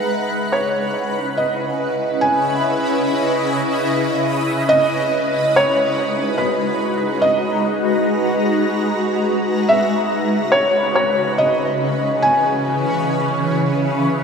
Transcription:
Already playing: C#3 B4 E5 F#5
0.02 C#4
0.40 E4
0.52 C#5
1.37 D#5
1.44 D#5
2.21 G#5
4.69 G#3 D#5
4.91 D#4
5.18 F#4
5.56 C#5
6.38 B4
6.45 A#5
7.22 D#5
9.69 C#3 E5
9.97 C#4
10.52 C#5
10.95 C#5
11.02 E3
11.38 D#5
12.22 G#5

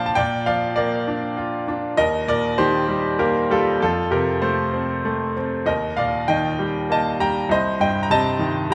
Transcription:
Already playing: A#2 F3 D4 F4 C5 D5 D#5 F5 G5 A5
0.06 A5
0.15 A#2 D5 G5
0.46 F3 D5 F5
0.76 A#3 A#4 D5
1.08 D4
1.37 F4
1.68 D4
1.97 D#2 A#4 D#5
2.28 A#2 A#4 D5
2.58 D#3 G4 C5
2.88 G3
3.19 A#3 G4 A#4
3.50 G3 F4 A4
3.81 F2 F4 A4
4.11 C3 G4 A#4
4.42 A3 A4 C5
4.74 C4
5.05 A3
5.37 C4
5.66 D#2 A#4 D#5
5.97 A#2 D5 F5
6.28 D#3 D#5 G5
6.59 G3
6.90 A#3 D#5 A5
7.20 G3 G5 A#5
7.49 C2 C5 D#5
7.80 G2 D#5 G5
8.03 A#5
8.10 C3 D#5 A5
8.39 D#3
8.70 G3

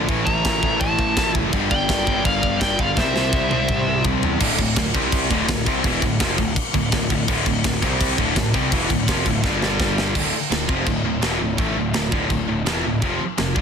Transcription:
0.08 A1 A2 E3 A3, kick, china
0.26 A1 E5 A#5, kick
0.45 A1, kick, snare, china
0.62 A1 A2 E3 A3, kick
0.80 A1 E5 A5, kick, china
0.99 A1, kick
1.16 A1 A2 E3 A3, kick, snare, china
1.35 F#1, kick
1.52 G1 G2 D3 G3, kick, china
1.71 G1 D5 G5, kick
1.89 G1, kick, snare, china
2.07 G1 G2 D3 G3, kick
2.25 G1 D5 F5, kick, china
2.43 G1, kick
2.60 G1 G2 D3 G3 D5 G5, kick, snare, china
2.79 G1 D5 F5, kick
2.96 C2 C3 G3 C4 C5 E5, kick, snare
3.15 C2, snare
3.33 C2, kick
3.50 C2 C3 G3 C4, high tom
3.69 C2, kick, mid tom
3.87 C2
4.04 C2 C3 G3 C4, kick, floor tom
4.23 E2, floor tom
4.40 D1 D2 A2 D3, kick, crash
4.58 D1 D2 A2, kick, crash
4.76 D1 D2 A2, kick, snare, crash
4.94 C2 C3 G3 C4, kick, crash
5.12 kick, crash
5.31 D1 D2 A2 D3, kick, crash
5.48 D1 D2 A2, kick, snare, crash
5.66 C2 C3 G3 C4, kick, crash
5.84 E1 E2 B2 E3, kick, crash
6.02 D1 D2 A2, kick, crash
6.20 F1 F2 C3 F3, kick, snare, crash
6.38 D1 D2 A2, kick, crash
6.56 kick, crash
6.74 D1 D2 A2, kick, crash
6.92 D1 D2 A2, kick, snare, crash
7.10 D1 D2 A2, kick, crash
7.28 D1 D2 A2 D3, kick, crash
7.46 D1 D2 A2, kick, crash
7.64 D1 D2 A2, kick, snare, crash
7.82 C2 C3 G3 C4, kick, crash
8.01 kick, crash
8.18 D1 D2 A2 D3, kick, crash
8.36 D1 D2 A2, kick, snare, crash
8.54 C2 C3 G3 C4, kick, crash
8.72 E1 E2 B2 E3, kick, crash
8.90 D1 D2 A2, kick, crash
9.08 F1 F2 C3 F3, kick, snare, crash
9.26 D1 D2 A2, kick, crash
9.44 G1 G2 D3 G3, kick, snare
9.62 snare
9.80 kick, snare
9.98 snare
10.15 D1 D2 A2 D3, kick, crash, china
10.33 muted picked electric bass stroke, muted distorted electric guitar stroke
10.51 D1 D2 A2, snare, china
10.68 F1 F2 C3 F3, kick
10.86 D1 D2 A2, kick, china
11.05 D1 D2 A2
11.22 E1 E2 B2 E3, snare, china
11.41 D1 D2 A2
11.58 A1 A2 E3 A3, kick, china
11.77 D1 D2 A2
11.94 D1 D2 A2, snare, china
12.12 D1 D2 A2 D3, kick
12.30 D1 D2 A2, kick, china
12.49 D1 D2 A2
12.66 E1 E2 B2 E3, snare, china
12.85 D1 D2 A2
13.02 F1 F2 C3 F3, kick, china
13.20 muted distorted electric guitar stroke, muted picked electric bass stroke
13.38 F1 F2 C3, snare, china
13.55 G1 G2 D3 G3, kick

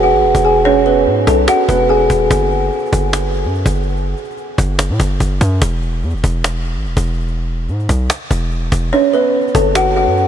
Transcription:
Already playing: E1
0.03 F#4 F#5
0.14 G#1
0.24 E1
0.35 E1, cajon bass
0.45 G#4 G#5
0.65 C#4 C#5
0.86 B3 B4
1.07 G#2
1.27 B1 A4 A5, cajon bass
1.48 F#4 F#5, cajon slap
1.69 E1 B3 B4, cajon bass
1.89 G#4 G#5
2.10 D#1, cajon bass
2.31 F#1, cajon bass
2.51 cajon slap
2.72 cajon slap
2.79 cajon slap
2.86 cajon slap
2.93 F#1, cajon bass
3.13 cajon slap
3.34 cajon slap
3.45 F#2
3.55 cajon slap
3.66 F#1, cajon bass
3.75 cajon slap
3.82 cajon slap
3.89 cajon slap
3.96 cajon slap
4.17 cajon slap
4.24 cajon slap
4.31 cajon slap
4.37 cajon slap
4.58 F#1, cajon bass
4.79 cajon slap
4.90 A2
5.00 F#1, cajon bass
5.20 F#1, cajon bass
5.41 F#2, cajon bass, cajon slap
5.62 E1, cajon bass
5.82 cajon slap
6.03 E2, cajon slap
6.10 E1, cajon slap
6.17 cajon slap
6.24 E1, cajon bass
6.44 cajon slap
6.65 cajon slap
6.76 G#1
6.86 E1, cajon slap
6.97 E1, cajon bass
7.07 cajon slap
7.13 cajon slap
7.20 cajon slap
7.27 cajon slap
7.68 G#2, cajon slap
7.80 cajon slap
7.89 B1, cajon bass
8.10 cajon slap
8.31 E1, cajon bass
8.51 cajon slap
8.72 E1, cajon bass
8.93 C#4 C#5, cajon slap
9.13 B3 B4, cajon slap
9.34 cajon slap
9.41 cajon slap
9.48 cajon slap
9.55 F#1 A4 A5, cajon bass
9.75 F#4 F#5, cajon slap
9.96 F#4 F#5, cajon slap
10.07 F#2
10.17 cajon slap

